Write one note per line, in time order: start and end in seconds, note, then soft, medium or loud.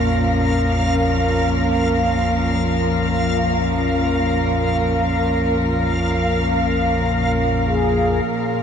0.00 8.26 A#1 medium
0.00 8.26 F2 medium
0.00 8.26 A#2 medium
0.00 8.27 F3 medium
0.00 8.28 C#4 medium
0.00 8.63 A#4 medium
0.00 8.26 F5 medium
7.65 8.30 G#4 loud
8.27 8.63 A#1 medium
8.27 8.63 F2 medium
8.27 8.63 A#2 medium
8.27 8.63 A#4 loud
8.27 8.63 F5 medium